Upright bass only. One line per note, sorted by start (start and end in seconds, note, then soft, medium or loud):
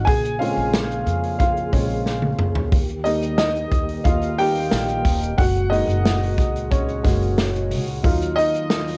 0.07 0.54 A#1 loud
0.56 1.03 A#1 medium
1.06 1.69 F2 medium
1.73 2.35 A#1 medium
2.39 2.70 C#2 medium
2.72 3.68 D#2 medium
3.72 4.03 D#2 medium
4.05 4.68 D#2 loud
4.71 5.02 A#1 medium
5.05 5.36 D#1 medium
5.38 5.85 F#1 loud
5.87 6.34 F#1 loud
6.38 7.00 C#2 medium
7.04 7.72 F#1 medium
7.71 8.02 C#2 medium
8.04 8.97 D#2 loud